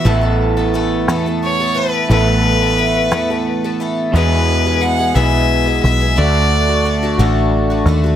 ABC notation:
X:1
M:6/8
L:1/16
Q:3/8=59
K:Amix
V:1 name="Fiddle"
z8 c2 B2 | B8- B2 z2 | [K:Emix] B4 f2 e4 e2 | d6 z6 |]
V:2 name="Twelve-string acoustic guitar"
[A,,E,A,B,A] [A,B,A]2 [A,B,A] [E,A,B,A]2 [A,,E,A,B,A] [A,B,A]2 [A,B,A] [E,A,B,A]2 | [A,,E,A,B,A] [A,B,A]2 [A,B,A] [E,A,B,A]2 [A,,E,A,B,A] [A,B,A]2 [A,B,A] [E,A,B,A]2 | [K:Emix] [E,,B,,E,G,B,G]3 [E,G,B,G] [E,G,B,G] [E,G,B,G] [E,,B,,E,G,B,G]3 [E,G,B,G] [E,G,B,G] [E,G,B,G] | [D,A,DF]3 [A,DF] [D,A,DF] [A,DF] [D,A,DF]3 [A,DF] [D,A,DF] [A,DF] |]
V:3 name="Clean electric guitar"
[A,,E,A,B,A]12 | [A,,E,A,B,A]12 | [K:Emix] [E,,B,,E,G,B,G]6 [E,,B,,E,G,B,G]6 | [D,A,DF]6 [D,A,DF]6 |]
V:4 name="Picked electric bass" clef=bass
A,,,6 E,,6 | A,,,6 E,,6 | [K:Emix] E,,6 B,,,4 B,,,2 | D,,6 A,,,4 _E,,2 |]